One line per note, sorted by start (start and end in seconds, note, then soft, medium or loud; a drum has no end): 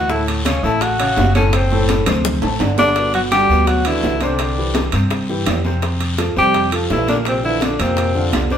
0.00 0.58 D2 medium
0.00 0.12 F#4 loud
0.10 0.39 A2 medium
0.10 0.40 A3 medium
0.10 0.28 E4 medium
0.10 0.40 A4 medium
0.10 high bongo medium
0.10 high conga soft
0.10 long guiro medium
0.27 0.45 A3 soft
0.27 high bongo soft
0.27 high conga soft
0.27 high timbale medium
0.45 0.60 C#3 medium
0.45 0.65 C#4 medium
0.45 0.61 C#4 medium
0.45 0.61 C#5 medium
0.45 high bongo medium
0.45 high conga medium
0.45 high timbale medium
0.45 low timbale medium
0.45 short guiro medium
0.63 1.13 A1 medium
0.63 0.93 A3 medium
0.63 0.84 E4 loud
0.63 0.93 A4 medium
0.63 0.93 A5 medium
0.63 high conga soft
0.63 short guiro medium
0.81 1.35 F#4 loud
0.81 high bongo medium
0.81 high conga soft
0.81 high timbale medium
0.81 long guiro medium
0.99 1.29 C#3 medium
0.99 1.29 C#4 medium
0.99 1.29 C#5 medium
0.99 high bongo soft
0.99 high conga soft
0.99 high timbale loud
1.17 2.01 F#1 medium
1.17 high bongo soft
1.17 low bongo medium
1.17 high conga medium
1.17 low timbale medium
1.17 short guiro medium
1.35 1.50 A2 medium
1.35 1.51 A3 medium
1.35 1.56 C#4 medium
1.35 1.51 A4 medium
1.35 high bongo soft
1.35 high conga medium
1.35 high timbale medium
1.35 short guiro medium
1.53 1.68 C3 medium
1.53 1.68 C4 medium
1.53 1.89 C4 medium
1.53 1.68 C5 medium
1.53 high bongo medium
1.53 high conga soft
1.53 high timbale medium
1.53 long guiro medium
1.71 2.01 A2 loud
1.71 2.01 A3 medium
1.71 2.01 A4 loud
1.71 high bongo soft
1.71 high conga soft
1.89 high bongo medium
1.89 high conga medium
1.89 high timbale medium
1.89 low timbale medium
1.89 short guiro medium
2.06 2.40 D2 loud
2.06 2.36 C3 medium
2.06 2.36 C4 medium
2.06 2.36 C5 medium
2.06 high bongo medium
2.06 high conga medium
2.06 low conga medium
2.06 high timbale loud
2.06 short guiro medium
2.25 high bongo loud
2.25 high conga soft
2.25 low conga medium
2.25 long guiro medium
2.42 2.59 A1 medium
2.42 2.57 A3 medium
2.42 2.57 A4 medium
2.42 2.58 A5 medium
2.42 low bongo medium
2.42 high timbale medium
2.60 3.44 G1 medium
2.60 2.90 D3 medium
2.60 2.90 D4 medium
2.60 2.90 D5 medium
2.60 low bongo medium
2.60 high conga medium
2.60 high timbale medium
2.60 short guiro medium
2.77 3.11 D3 medium
2.77 3.12 D4 loud
2.77 low bongo medium
2.77 high conga medium
2.77 low timbale medium
2.77 short guiro medium
2.96 3.26 B2 medium
2.96 3.26 B3 medium
2.96 3.26 B4 medium
2.96 high bongo medium
2.96 high timbale medium
2.96 long guiro medium
3.13 3.21 F#3 medium
3.13 3.23 F#4 medium
3.13 high bongo soft
3.13 high conga soft
3.13 high timbale medium
3.31 3.47 D3 medium
3.31 3.69 G3 medium
3.31 3.47 D4 medium
3.31 3.47 F#4 medium
3.31 3.69 G4 loud
3.31 high bongo medium
3.31 high conga medium
3.31 high timbale medium
3.31 low timbale medium
3.31 short guiro medium
3.49 3.99 D2 medium
3.49 3.80 B2 medium
3.49 3.80 B3 medium
3.49 3.80 B4 medium
3.49 high conga soft
3.49 short guiro medium
3.67 3.86 F#3 medium
3.67 3.88 F#4 loud
3.67 high bongo medium
3.67 high conga soft
3.67 high timbale medium
3.67 long guiro medium
3.85 4.01 D3 medium
3.85 4.22 E3 medium
3.85 4.01 D4 medium
3.85 4.24 E4 medium
3.85 4.01 F#4 medium
3.85 high bongo soft
3.85 high conga soft
3.85 high timbale medium
4.03 4.87 C2 medium
4.03 4.19 D3 medium
4.03 4.19 D4 medium
4.03 4.19 F#4 medium
4.03 high bongo soft
4.03 low bongo medium
4.03 high conga soft
4.03 low timbale medium
4.03 short guiro medium
4.21 4.51 C3 medium
4.21 4.93 D3 medium
4.21 4.51 C4 medium
4.21 4.93 D4 medium
4.21 4.51 C5 medium
4.21 high bongo soft
4.21 high conga medium
4.21 high timbale medium
4.21 short guiro medium
4.39 high bongo medium
4.39 high conga soft
4.39 high timbale medium
4.39 long guiro medium
4.57 4.87 E3 medium
4.57 4.87 E4 medium
4.57 4.87 G4 medium
4.57 high bongo soft
4.57 high conga soft
4.75 high bongo medium
4.75 high conga medium
4.75 high timbale medium
4.75 low timbale medium
4.75 short guiro medium
4.92 5.43 G2 loud
4.92 5.22 C3 medium
4.92 5.23 C4 medium
4.92 5.23 C5 medium
4.92 high conga soft
4.92 high timbale medium
4.92 short guiro medium
5.10 high bongo medium
5.10 high conga soft
5.10 high timbale medium
5.10 long guiro medium
5.29 5.59 E3 medium
5.29 5.59 E4 medium
5.29 5.59 G4 medium
5.29 high bongo soft
5.29 high conga soft
5.46 6.30 F2 medium
5.46 high bongo soft
5.46 low bongo medium
5.46 high conga medium
5.46 high timbale loud
5.46 low timbale medium
5.46 short guiro medium
5.65 5.80 C3 medium
5.65 5.80 C4 medium
5.65 5.80 C5 medium
5.65 high bongo soft
5.65 high conga medium
5.65 short guiro medium
5.82 6.12 C3 medium
5.82 6.12 C4 medium
5.82 6.12 C5 medium
5.82 high bongo medium
5.82 high conga soft
5.82 high timbale medium
5.82 long guiro medium
6.00 high bongo soft
6.00 high conga soft
6.00 high timbale medium
6.18 6.33 F3 medium
6.18 6.33 F4 medium
6.18 6.33 A4 medium
6.18 high bongo medium
6.18 high conga medium
6.18 high timbale medium
6.18 low timbale medium
6.18 short guiro medium
6.36 6.86 F2 medium
6.36 6.66 C3 medium
6.36 6.71 G3 medium
6.36 6.66 C4 medium
6.36 6.71 G4 loud
6.36 6.66 C5 medium
6.36 high conga soft
6.36 short guiro medium
6.54 high bongo medium
6.54 high conga soft
6.54 high timbale medium
6.54 long guiro medium
6.72 6.87 F3 medium
6.72 6.87 F4 medium
6.72 6.87 A4 medium
6.72 high bongo soft
6.72 high conga soft
6.72 high timbale medium
6.90 7.74 A#1 medium
6.90 7.07 E3 medium
6.90 7.05 F3 medium
6.90 7.08 E4 medium
6.90 7.05 F4 medium
6.90 7.06 A4 medium
6.90 high bongo soft
6.90 low bongo medium
6.90 high conga soft
6.90 low timbale medium
6.90 short guiro medium
7.08 7.37 A#2 medium
7.08 7.17 D3 medium
7.08 7.37 A#3 medium
7.08 7.17 D4 medium
7.08 7.38 A#4 medium
7.08 high bongo soft
7.08 high conga medium
7.08 high timbale medium
7.08 short guiro medium
7.25 7.44 C3 medium
7.25 7.44 C4 medium
7.25 high bongo medium
7.25 high conga soft
7.25 high timbale medium
7.25 long guiro medium
7.43 7.73 D3 medium
7.43 7.65 E3 medium
7.43 7.73 D4 medium
7.43 7.65 E4 medium
7.43 7.73 F4 medium
7.43 high bongo soft
7.43 high conga soft
7.61 7.82 D3 medium
7.61 7.82 D4 medium
7.61 high bongo medium
7.61 high conga medium
7.61 high timbale medium
7.61 low timbale medium
7.61 short guiro medium
7.79 8.30 F2 loud
7.79 8.09 A#2 medium
7.79 8.34 C3 medium
7.79 8.09 A#3 medium
7.79 8.34 C4 loud
7.79 8.09 A#4 medium
7.79 high conga soft
7.79 high timbale medium
7.79 short guiro medium
7.97 high bongo medium
7.97 high conga soft
7.97 high timbale medium
7.97 long guiro medium
8.15 8.45 D3 medium
8.15 8.45 D4 medium
8.15 8.45 F4 medium
8.15 high bongo soft
8.15 high conga soft
8.33 8.58 C2 medium
8.33 high bongo soft
8.33 low bongo medium
8.33 high conga medium
8.33 high timbale medium
8.33 low timbale medium
8.33 short guiro medium
8.50 8.58 C3 medium
8.50 8.58 D3 medium
8.50 8.58 C4 medium
8.50 8.58 D4 medium
8.50 8.58 C5 medium
8.50 high bongo soft
8.50 high conga medium
8.50 short guiro medium